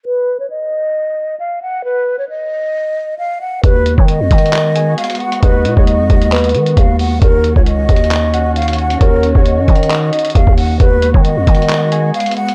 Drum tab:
HH |------------------------------------------------------------------------------------------------|------------------------------------------------------------------------------------------------|x-----------x-----------x-----------x---x---x---x-----------x-----------x--x--x--x--x-----x-----|x-----------x-----------x-----------x-----x-----x--x--x--x--x-----x-----x-----------o-----------|
CP |------------------------------------------------------------------------------------------------|------------------------------------------------------------------------------------------------|------------------------------------------------x-----------------------------------------------|------------------------------------------------x-----------------------------------------------|
BD |------------------------------------------------------------------------------------------------|------------------------------------------------------------------------------------------------|o-----------------o-----------------o-----------------------------------------------------------|o-----------------o-----------------o-----------------------------------o-----------------------|

HH |x-----------x-----------x-----------x---x---x---x-----------x-----------x--x--x--x--x-----x-----|x-----------x-----------x-----------x---x---x---x-----------x--x--x--x--x-----------o-----------|x-----------x-----------x-----------x---x---x---x-----------x-----------x--x--x--x--x-----x-----|
CP |------------------------------------------------x-----------------------------------------------|------------------------------------------------x-----------------------------------------------|------------------------------------------------x-----------------------------------------------|
BD |o-----------------o-----------------o-----------------------------------------------------------|o-----------------o-----------------o-----------------------------------o-----o-----------------|o-----------------o-----------------o-----------------------------------------------------------|